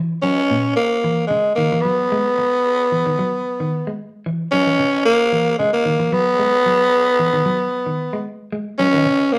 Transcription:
Already playing: clean electric guitar E3
0.22 clean electric guitar F#3, tenor saxophone C#4
0.51 clean electric guitar A#2
0.76 tenor saxophone A#3
1.04 clean electric guitar E3
1.27 clean electric guitar C#3, tenor saxophone G#3
1.56 clean electric guitar D#3, tenor saxophone A#3
1.72 clean electric guitar E3
1.81 clean electric guitar F#3, tenor saxophone B3
2.12 clean electric guitar G#3
2.38 muted clean electric guitar stroke
2.92 clean electric guitar E3
3.06 clean electric guitar D#3
3.19 clean electric guitar F#3
3.60 clean electric guitar D#3
3.87 clean electric guitar G#3
4.26 clean electric guitar E3
4.51 clean electric guitar F#3, tenor saxophone C#4
4.67 clean electric guitar E3
4.80 clean electric guitar C#3
5.06 tenor saxophone A#3
5.32 clean electric guitar E3
5.59 clean electric guitar C#3, tenor saxophone G#3
5.73 tenor saxophone A#3
5.86 clean electric guitar D#3
6.00 clean electric guitar E3
6.12 clean electric guitar F#3, tenor saxophone B3
6.39 clean electric guitar G#3
6.66 clean electric guitar F#3
7.19 clean electric guitar E3
7.33 clean electric guitar D#3
7.46 clean electric guitar F#3
7.86 clean electric guitar D#3
8.13 clean electric guitar G#3
8.52 clean electric guitar G#3
8.79 clean electric guitar F#3, tenor saxophone C#4
8.94 clean electric guitar D#3
9.06 clean electric guitar C#3
9.33 tenor saxophone A#3

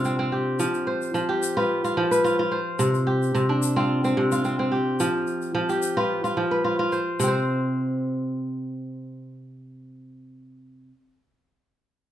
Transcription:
Already playing: kora C3 D4 F4
0.04 kora C4, shaker
0.19 kora C4
0.32 kora G4
0.59 kora F3, shaker
0.74 shaker
0.87 kora C5
1.02 shaker
1.14 kora F3, shaker
1.29 kora G4
1.43 shaker
1.57 kora F4 B4
1.84 kora F4, shaker
1.97 kora F3
2.11 kora B4, shaker
2.24 kora F4, shaker
2.39 kora F4
2.52 kora C5
2.79 kora C3, shaker
2.94 shaker
3.07 kora G4
3.23 shaker
3.35 kora C3, shaker
3.49 kora D4
3.62 shaker
3.76 kora C4 F4
4.04 kora C4, shaker
4.17 kora C3
4.32 kora F4, shaker
4.44 kora C4, shaker
4.59 kora C4
4.72 kora G4
5.00 kora F3, shaker
5.27 shaker
5.42 shaker
5.55 kora F3
5.69 kora G4, shaker
5.82 shaker
5.97 kora F4 B4
6.24 kora F4, shaker
6.37 kora F3
6.51 kora B4
6.64 kora F4
6.79 kora F4
6.92 kora C5, shaker
7.20 kora C3 C4, shaker
7.27 kora C5

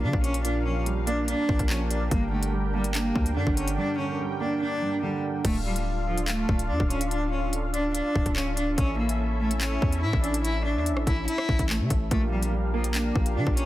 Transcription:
Already playing: grand piano A#2 F3 G3 A#3 D4, analog synth pad D4 G4 A#4 F5
0.03 808-style bass D3, grand piano F3, cello D4
0.13 808-style bass A#1, kick
0.24 cello C#4, closed hi-hat
0.34 closed hi-hat
0.45 grand piano A#2, cello D4, closed hi-hat
0.66 grand piano F3, cello C#4
0.86 grand piano G3, closed hi-hat
1.07 grand piano A#3, cello D4, closed hi-hat
1.28 grand piano D4, cello D4, closed hi-hat
1.49 808-style bass A#1, grand piano A#2, kick
1.59 808-style bass A#1, kick, closed hi-hat
1.70 grand piano F3, cello C#4, clap
1.91 cello D4, closed hi-hat
2.11 808-style bass G1, grand piano G2, cello A#3, analog synth pad G5, kick, closed hi-hat
2.32 grand piano D3, cello A3
2.43 closed hi-hat
2.53 grand piano G3
2.74 cello G3, grand piano A#3
2.84 closed hi-hat
2.95 cello A#3, grand piano D4, clap, closed hi-hat
3.15 808-style bass D2, grand piano G2, kick
3.26 closed hi-hat
3.36 808-style bass G2, grand piano D3, cello D4
3.47 808-style bass G1, kick
3.57 cello C#4, closed hi-hat
3.68 closed hi-hat
3.78 grand piano G2, cello D4
3.99 grand piano D3, cello C#4
4.20 grand piano G3
4.40 grand piano A#3, cello D4
4.61 grand piano D4, cello D4
4.82 grand piano G2
5.03 grand piano D3, cello G3
5.45 808-style bass D1, cello A3, analog synth pad D4 F4 A4 F5, kick, closed hi-hat, crash
5.66 cello G3
5.76 closed hi-hat
6.07 cello F3
6.18 closed hi-hat
6.28 cello A3, clap, closed hi-hat
6.49 808-style bass D1, kick
6.59 closed hi-hat
6.69 808-style bass F2, cello D4
6.80 808-style bass D1, kick
6.90 cello C#4, closed hi-hat
7.01 closed hi-hat
7.11 cello D4, closed hi-hat
7.32 cello C#4
7.53 closed hi-hat
7.74 cello D4, closed hi-hat
7.95 cello D4, closed hi-hat
8.15 808-style bass D1, kick
8.26 808-style bass D1, kick, closed hi-hat
8.36 cello C#4, clap
8.57 cello D4, closed hi-hat
8.78 808-style bass A1, cello C#4, analog synth pad C#4 E4 E5, kick, closed hi-hat
8.99 cello A#3
9.09 closed hi-hat
9.40 cello A3
9.51 closed hi-hat
9.61 cello C#4, clap, closed hi-hat
9.82 808-style bass E2, kick
9.92 closed hi-hat
10.03 808-style bass A2, cello E4
10.13 808-style bass A1, kick
10.23 cello D4, closed hi-hat
10.34 closed hi-hat
10.45 cello E4, closed hi-hat
10.65 cello D4
10.76 808-style bass E2
10.86 closed hi-hat
10.91 808-style bass A1
10.97 cross-stick
11.07 808-style bass A1, cello E4, kick, closed hi-hat
11.28 cello E4, closed hi-hat
11.38 cross-stick
11.49 808-style bass A1, kick
11.59 808-style bass A1, kick, closed hi-hat
11.69 cello A3, clap
11.80 808-style bass C#3
11.90 808-style bass A1, kick, closed hi-hat
12.11 808-style bass A#1, grand piano A#2, cello A3, analog synth pad D4 G4 A#4 F5, kick, closed hi-hat
12.32 grand piano F3, cello G3
12.43 closed hi-hat
12.53 grand piano G3
12.74 cello F3, grand piano A#3
12.84 closed hi-hat
12.95 cello A#3, grand piano D4, clap, closed hi-hat
13.15 808-style bass A#1, grand piano A#2, kick
13.26 closed hi-hat
13.36 808-style bass D3, grand piano F3, cello D4
13.47 808-style bass A#1, kick
13.57 cello C#4, closed hi-hat

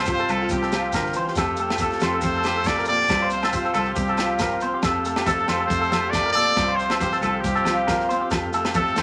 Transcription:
Already playing: fingered electric bass C2, steel-string acoustic guitar C3 C4, transistor combo organ C5 F5 G5
0.06 steel-string acoustic guitar F4, clean electric guitar G4, kick, shekere
0.12 muted trumpet C5
0.18 clean electric guitar A4, shekere
0.29 fingered electric bass C2, steel-string acoustic guitar F3, muted trumpet A4, clean electric guitar A4, low agogo, shekere
0.42 clean electric guitar F4
0.49 fingered electric bass C2, steel-string acoustic guitar C4, muted trumpet G4, kick, shekere
0.62 clean electric guitar A4, snare, shekere
0.72 steel-string acoustic guitar F4, snare, low agogo, shekere
0.92 steel-string acoustic guitar D3, clean electric guitar A#4, kick, snare, low agogo, shekere
1.06 snare
1.13 steel-string acoustic guitar E3, clean electric guitar C5, shekere
1.28 clean electric guitar G4, snare
1.35 steel-string acoustic guitar F2 F3 A3 C4 G4, fingered electric bass F2, transistor combo organ A4, clean electric guitar A4, kick, snare, low agogo, shekere
1.56 steel-string acoustic guitar A3, clean electric guitar A4, shekere
1.70 clean electric guitar G4, snare, low agogo
1.78 steel-string acoustic guitar C4, muted trumpet A4, clean electric guitar A4, kick, shekere
1.90 snare, shekere
2.00 fingered electric bass F2, steel-string acoustic guitar F3, clean electric guitar C5, snare, low agogo, shekere
2.14 clean electric guitar A4
2.21 fingered electric bass F2, steel-string acoustic guitar A3, muted trumpet C5, kick, snare, shekere
2.33 clean electric guitar A4, shekere
2.43 steel-string acoustic guitar C4, clean electric guitar G4, snare, low agogo, shekere
2.57 clean electric guitar A4
2.64 steel-string acoustic guitar A2, muted trumpet D5, kick, snare, low agogo, shekere
2.78 clean electric guitar A#4, snare
2.85 steel-string acoustic guitar A#2, muted trumpet D5, muted clean electric guitar stroke, shekere
3.00 snare
3.08 fingered electric bass C2, steel-string acoustic guitar C3 F3 C4, transistor combo organ C5 F5, kick, snare, low agogo, shekere
3.12 steel-string acoustic guitar F4
3.21 clean electric guitar C5, shekere
3.30 steel-string acoustic guitar C4, muted trumpet C5, shekere
3.42 clean electric guitar A4, snare, low agogo, shekere
3.53 steel-string acoustic guitar F4, clean electric guitar G4, muted trumpet C5, kick, shekere
3.64 clean electric guitar A4, shekere
3.73 fingered electric bass C2, steel-string acoustic guitar F3, muted trumpet A4, clean electric guitar A4, low agogo, shekere
3.85 clean electric guitar G4, shekere
3.95 fingered electric bass C2, steel-string acoustic guitar C4, muted trumpet G4, kick, shekere
4.07 clean electric guitar A4, shekere
4.17 steel-string acoustic guitar F4, snare, low agogo, shekere
4.39 steel-string acoustic guitar F4, clean electric guitar A#4, kick, snare, low agogo, shekere
4.50 shekere
4.61 steel-string acoustic guitar C4, clean electric guitar C5, shekere
4.74 clean electric guitar G4
4.82 fingered electric bass F2, steel-string acoustic guitar F2 G4, transistor combo organ A4, clean electric guitar A4, kick, snare, muted conga, low agogo, shekere
5.05 steel-string acoustic guitar A3, clean electric guitar A4, shekere
5.16 clean electric guitar G4, snare, low agogo
5.25 steel-string acoustic guitar C4, muted trumpet A4, clean electric guitar A4, kick, high conga, shekere
5.39 shekere
5.47 fingered electric bass F2, steel-string acoustic guitar F3, clean electric guitar C5, snare, low agogo, shekere
5.60 clean electric guitar A4
5.66 fingered electric bass F2, muted trumpet C5
5.70 steel-string acoustic guitar A3, kick, shekere
5.81 clean electric guitar A4, shekere
5.91 steel-string acoustic guitar C4, clean electric guitar A4, snare, muted conga, high conga, low agogo, shekere
6.04 clean electric guitar G4
6.10 steel-string acoustic guitar A2, muted trumpet D5, kick, snare, high conga, shekere
6.15 low agogo
6.26 clean electric guitar A#4
6.32 steel-string acoustic guitar A#2, clean electric guitar A4, muted trumpet D5
6.55 fingered electric bass C2, steel-string acoustic guitar C3 F3 C4 F4, transistor combo organ C5 G5, kick, snare, muted conga, low agogo, shekere
6.68 clean electric guitar C5
6.76 muted trumpet C5, shekere
6.90 clean electric guitar A4, snare, low agogo
6.99 clean electric guitar G4, muted trumpet C5, muted steel-string acoustic guitar stroke, kick, high conga, shekere
7.12 clean electric guitar A4, snare, shekere
7.21 fingered electric bass C2, steel-string acoustic guitar F3, muted trumpet A4, clean electric guitar A4, muted conga, low conga, low agogo, shekere
7.34 clean electric guitar G4
7.40 fingered electric bass C2, steel-string acoustic guitar C4, muted trumpet G4, kick, snare, muted conga, shekere
7.55 clean electric guitar A4, shekere
7.65 steel-string acoustic guitar F4, snare, muted conga, high conga, low agogo, shekere
7.87 steel-string acoustic guitar F4, clean electric guitar A#4, kick, snare, high conga, low agogo, shekere
8.00 snare
8.09 steel-string acoustic guitar C4, clean electric guitar C5, shekere
8.21 clean electric guitar G4
8.31 steel-string acoustic guitar F2 G4, fingered electric bass F2, transistor combo organ A4, muted clean electric guitar stroke, kick, snare, low agogo, shekere
8.53 steel-string acoustic guitar A3, clean electric guitar A4, shekere
8.65 clean electric guitar G4, snare, low agogo
8.74 steel-string acoustic guitar C4, muted trumpet A4, clean electric guitar A4, kick, high conga, shekere
8.87 shekere
8.96 fingered electric bass F2, steel-string acoustic guitar F3, clean electric guitar C5, snare, muted conga, low agogo, shekere

